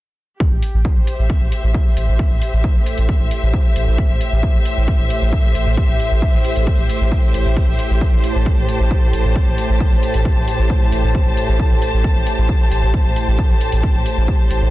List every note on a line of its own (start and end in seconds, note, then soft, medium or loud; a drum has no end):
0.40 14.70 A2 medium
0.40 14.70 G4 medium
0.40 kick loud
0.51 0.62 A1 medium
0.62 open hi-hat loud
0.74 0.85 A1 medium
0.85 14.70 C5 medium
0.85 kick loud
0.96 1.07 A1 medium
1.07 open hi-hat loud
1.15 1.29 A1 medium
1.15 8.34 E5 medium
1.30 kick loud
1.41 1.52 A1 medium
1.52 open hi-hat loud
1.63 1.74 A1 medium
1.74 kick loud
1.97 2.08 A1 medium
1.97 open hi-hat loud
2.08 2.19 A1 medium
2.19 kick loud
2.31 2.41 A1 medium
2.42 open hi-hat loud
2.53 2.64 A1 medium
2.64 kick loud
2.75 2.86 A1 medium
2.86 open hi-hat loud
2.98 3.09 A1 medium
2.98 open hi-hat medium
3.09 kick loud
3.20 3.31 A1 medium
3.31 open hi-hat loud
3.42 3.53 A1 medium
3.54 kick loud
3.76 3.87 A1 medium
3.76 open hi-hat loud
3.87 3.98 A1 medium
3.98 kick loud
4.10 4.21 A1 medium
4.21 open hi-hat loud
4.32 4.43 A1 medium
4.43 kick loud
4.54 4.65 A1 medium
4.65 open hi-hat loud
4.77 4.88 A1 medium
4.88 kick loud
4.99 5.10 A1 medium
5.10 open hi-hat loud
5.22 5.32 A1 medium
5.33 kick loud
5.55 5.66 A1 loud
5.55 open hi-hat loud
5.66 5.77 A1 medium
5.77 kick loud
5.89 6.00 A1 medium
6.00 open hi-hat loud
6.11 6.22 A1 medium
6.22 kick loud
6.34 6.44 A1 medium
6.45 open hi-hat loud
6.56 6.67 A1 medium
6.56 open hi-hat medium
6.67 kick loud
6.78 6.89 A1 medium
6.89 open hi-hat loud
7.01 7.12 A1 medium
7.12 kick loud
7.34 7.45 A1 loud
7.34 open hi-hat loud
7.45 7.56 A1 medium
7.57 kick loud
7.68 7.79 A1 medium
7.79 open hi-hat loud
7.90 8.01 A1 medium
8.01 kick loud
8.13 8.23 A1 medium
8.24 open hi-hat loud
8.31 8.46 A1 medium
8.31 14.70 A5 medium
8.46 kick loud
8.57 8.68 A1 medium
8.69 open hi-hat loud
8.80 8.91 A1 medium
8.91 kick loud
9.13 9.24 A1 loud
9.13 open hi-hat loud
9.25 9.35 A1 medium
9.36 kick loud
9.47 9.58 A1 medium
9.58 open hi-hat loud
9.69 9.80 A1 medium
9.80 kick loud
9.92 10.03 A1 medium
10.03 open hi-hat loud
10.14 10.25 A1 medium
10.14 open hi-hat medium
10.25 kick loud
10.37 10.47 A1 medium
10.48 open hi-hat loud
10.59 10.70 A1 medium
10.70 kick loud
10.92 11.03 A1 loud
10.92 open hi-hat loud
11.04 11.15 A1 medium
11.15 kick loud
11.26 11.37 A1 medium
11.37 open hi-hat medium
11.48 11.59 A1 medium
11.60 kick loud
11.71 11.82 A1 medium
11.82 open hi-hat loud
11.93 12.04 A1 medium
12.04 kick loud
12.16 12.26 A1 medium
12.27 open hi-hat loud
12.38 12.49 A1 medium
12.49 kick loud
12.71 12.82 A1 loud
12.71 open hi-hat loud
12.83 12.94 A1 medium
12.94 kick loud
13.05 13.16 A1 medium
13.16 open hi-hat loud
13.28 13.38 A1 medium
13.39 kick loud
13.50 13.61 A1 medium
13.61 open hi-hat loud
13.72 13.83 A1 medium
13.72 open hi-hat medium
13.83 kick loud
13.95 14.06 A1 medium
14.06 open hi-hat loud
14.17 14.28 A1 medium
14.28 kick loud
14.51 14.61 A1 loud
14.51 open hi-hat loud
14.62 14.70 A1 medium